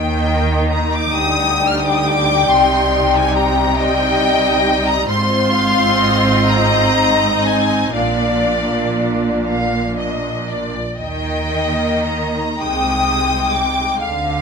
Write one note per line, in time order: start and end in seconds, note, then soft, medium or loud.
0.00 1.10 D#2 medium
0.00 1.10 D#3 medium
0.00 1.11 A#3 medium
0.00 2.44 D#4 medium
0.00 0.64 G5 medium
0.69 0.92 A#5 medium
0.93 1.15 D6 medium
1.14 2.45 D2 medium
1.14 2.45 D3 medium
1.14 3.74 G3 medium
1.14 3.74 G5 medium
1.14 1.69 D#6 medium
1.68 1.77 F6 medium
1.79 1.87 D#6 medium
1.87 1.95 D6 medium
1.96 2.04 D#6 medium
2.05 2.49 D6 medium
2.48 5.04 C2 medium
2.48 5.04 C3 medium
2.48 3.75 D#4 medium
2.48 3.14 C6 medium
3.15 3.36 G#5 medium
3.36 3.77 A#5 medium
3.78 5.06 G3 medium
3.78 5.05 D#4 medium
3.78 5.05 D#5 medium
3.78 4.86 G5 loud
4.87 5.08 A#5 loud
5.07 7.90 G#1 medium
5.07 7.90 G#2 medium
5.07 7.91 C4 medium
5.07 6.93 F4 medium
5.07 5.52 C5 medium
5.07 6.46 C6 loud
5.53 6.00 F5 medium
6.00 7.94 D#5 medium
6.48 7.45 A#5 loud
6.97 7.94 D#4 medium
7.45 7.94 G#5 medium
7.94 10.73 A#1 medium
7.94 10.73 A#2 medium
7.94 10.73 A#3 medium
7.94 10.73 D4 medium
7.94 9.32 D5 medium
7.94 9.42 F5 medium
9.45 9.92 F5 medium
9.97 10.48 D#5 medium
10.48 10.99 D5 medium
10.98 12.41 D#2 medium
10.98 12.41 D#3 medium
10.98 12.56 D#5 medium
10.98 12.02 G5 medium
11.50 12.57 A#3 soft
11.50 12.57 D#4 soft
12.06 12.59 A#5 medium
12.59 13.83 C2 medium
12.59 13.83 C3 medium
12.59 13.07 G#3 soft
12.59 13.07 D#4 soft
12.59 13.96 G5 medium
12.59 13.53 D#6 medium
13.08 13.97 G#3 soft
13.08 13.97 D#4 soft
13.54 13.99 D6 medium
13.98 14.42 D2 medium
13.98 14.42 D3 medium
13.98 14.42 F5 medium